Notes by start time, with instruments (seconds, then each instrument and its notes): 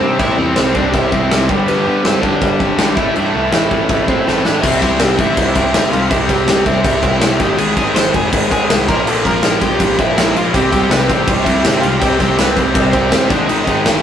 Already playing: overdriven electric guitar C4 C5
0.00 picked electric bass G2, overdriven electric guitar C3 G3 C4
0.19 picked electric bass A2, overdriven electric guitar C3 G3 C4 E4 E5, kick, crash
0.37 picked electric bass E2, overdriven electric guitar C3 G3 C4
0.56 picked electric bass C2, overdriven electric guitar C3 G3 C4 C5, snare, crash
0.74 picked electric bass C2, overdriven electric guitar C3 G3 C4 D4 D5, kick
0.93 picked electric bass C2, overdriven electric guitar C3 G3 C4 E4 E5, kick, crash
1.12 picked electric bass C2, overdriven electric guitar C3 G3 C4, kick
1.31 picked electric bass C2, overdriven electric guitar C3 G3 C4, snare, crash
1.49 picked electric bass G1, overdriven electric guitar G2 D3 G3, kick
1.67 picked electric bass G1, overdriven electric guitar G2 D3 G3 B3 B4, crash
1.86 overdriven electric guitar G2 D3 G3, picked electric bass G2
2.04 picked electric bass G1, overdriven electric guitar G2 D3 G3 C4 C5, snare, crash
2.22 picked electric bass G1, overdriven electric guitar G2 D3 G3 D4 D5, kick
2.41 picked electric bass G1, overdriven electric guitar G2 D3 G3, kick, crash
2.60 picked electric bass G1, overdriven electric guitar G2 D3 G3, kick
2.79 picked electric bass G#1, overdriven electric guitar G2 D3 G3, snare, crash
2.95 picked electric bass A1, overdriven electric guitar A2 E3 A3 E4 E5, kick
3.15 picked electric bass G2, overdriven electric guitar A2 E3 A3, crash
3.34 picked electric bass C2, overdriven electric guitar A2 E3 A3
3.52 picked electric bass A1, overdriven electric guitar A2 E3 A3, snare, crash
3.71 picked electric bass A1, overdriven electric guitar A2 E3 A3, kick
3.89 picked electric bass A1, overdriven electric guitar A2 E3 A3, kick, crash
4.08 picked electric bass A1, overdriven electric guitar A2 E3 A3 C4 C5, kick
4.27 picked electric bass A1, overdriven electric guitar A2 E3 A3, snare
4.45 picked electric bass A1, overdriven electric guitar A2 E3 A3 D4 D5, snare
4.62 picked electric bass C2, overdriven electric guitar C3 G3 C4 E4 E5, kick, crash
4.81 picked electric bass C2, overdriven electric guitar C3 G3 C4 E4 E5, kick, crash
4.99 picked electric bass C2, overdriven electric guitar C3 G3 C4 G4 G5, snare, crash
5.17 picked electric bass A1, overdriven electric guitar C3 G3 C4 E4 E5, kick, crash
5.36 picked electric bass C2, overdriven electric guitar C3 G3 C4, kick, crash
5.54 picked electric bass C2, overdriven electric guitar C3 G3 C4 E4 E5, kick, crash
5.73 picked electric bass G1, overdriven electric guitar C3 G3 C4, snare, crash
5.91 picked electric bass C2, overdriven electric guitar C3 G3 C4 F4 F5, crash
6.10 picked electric bass C2, overdriven electric guitar C3 G3 C4 E4 E5, kick, crash
6.29 picked electric bass C2, overdriven electric guitar C3 G3 C4 G4 G5, kick, crash
6.47 picked electric bass C2, overdriven electric guitar C3 G3 C4, snare, crash
6.66 picked electric bass C2, overdriven electric guitar C3 G3 C4 E4 E5, kick, crash
6.84 picked electric bass C2, overdriven electric guitar C3 G3 C4, kick, crash
7.03 picked electric bass C2, overdriven electric guitar C3 G3 C4 E4 E5, kick, crash
7.20 picked electric bass C2, overdriven electric guitar C3 G3 C4, snare, crash
7.39 picked electric bass G#1, overdriven electric guitar G#2 D#3 G#3 G4 G5, kick, crash
7.57 picked electric bass G#1, overdriven electric guitar G#2 D#3 G#3 G#4 G#5, crash
7.76 picked electric bass G#1, overdriven electric guitar G#2 D#3 G#3 G#4 G#5, kick, crash
7.94 picked electric bass G#1, overdriven electric guitar G#2 D#3 G#3 C5 C6, snare, crash
8.13 picked electric bass F1, overdriven electric guitar G#2 D#3 G#3 G#4 G#5, kick, crash
8.31 picked electric bass G#1, overdriven electric guitar G#2 D#3 G#3, kick, crash
8.50 picked electric bass G#1, overdriven electric guitar G#2 D#3 G#3 G#4 G#5, kick, crash
8.69 picked electric bass C2, overdriven electric guitar G#2 D#3 G#3, snare, crash
8.87 picked electric bass A#1, overdriven electric guitar A#2 F3 A#3 A#4 A#5, kick, crash
9.06 picked electric bass A#1, overdriven electric guitar A#2 F3 A#3 A4 A5, crash
9.24 picked electric bass A#1, overdriven electric guitar A#2 F3 A#3 A#4 A#5, kick, crash
9.43 picked electric bass A#1, overdriven electric guitar A#2 F3 A#3, snare, crash
9.61 picked electric bass A#1, overdriven electric guitar A#2 F3 A#3 G4 G5, kick, crash
9.79 picked electric bass A#1, overdriven electric guitar A#2 F3 A#3, kick, crash
9.97 picked electric bass A#1, overdriven electric guitar A#2 F3 A#3 E4 E5, kick, crash
10.17 picked electric bass A#1, overdriven electric guitar A#2 F3 A#3, snare, crash
10.34 picked electric bass A#1, overdriven electric guitar A#2 F3 A#3 F4 F5, crash
10.52 picked electric bass C2, overdriven electric guitar C3 G3 C4 G4 G5, kick, crash
10.71 picked electric bass C2, overdriven electric guitar C3 G3 C4 G4 G5, kick, crash
10.89 picked electric bass C2, overdriven electric guitar C3 G3 C4 B4 B5, snare, crash
11.08 picked electric bass A1, overdriven electric guitar C3 G3 C4, kick, crash
11.27 picked electric bass C2, overdriven electric guitar C3 G3 C4, kick, crash
11.45 picked electric bass C2, overdriven electric guitar C3 G3 C4 E4 E5, kick, crash
11.63 picked electric bass G1, overdriven electric guitar C3 G3 C4, snare, crash
11.80 picked electric bass C2, overdriven electric guitar C3 G3 C4 F4 F5, crash
12.00 picked electric bass C2, overdriven electric guitar C3 G3 C4 G4 G5, kick, crash
12.18 picked electric bass C2, overdriven electric guitar C3 G3 C4 G4 G5, kick, crash
12.38 picked electric bass C2, overdriven electric guitar C3 G3 C4 B4 B5, snare, crash
12.56 picked electric bass C2, overdriven electric guitar C3 G3 C4, kick, crash
12.75 picked electric bass C2, overdriven electric guitar C3 G3 C4, kick, crash
12.92 picked electric bass C2, overdriven electric guitar C3 G3 C4 C5, kick, crash
13.12 picked electric bass G1, overdriven electric guitar C3 G3 C4, snare, crash
13.29 picked electric bass G#1, overdriven electric guitar G#2 D#3 G#3 D4 D5, kick, crash
13.47 picked electric bass G#1, overdriven electric guitar G#2 D#3 G#3 D#4 D#5, crash
13.64 picked electric bass G#1, overdriven electric guitar G#2 D#4 D#5, kick, crash
13.68 overdriven electric guitar D#3 G#3
13.85 picked electric bass G#1, overdriven electric guitar G#2 D#3 G#3, snare, crash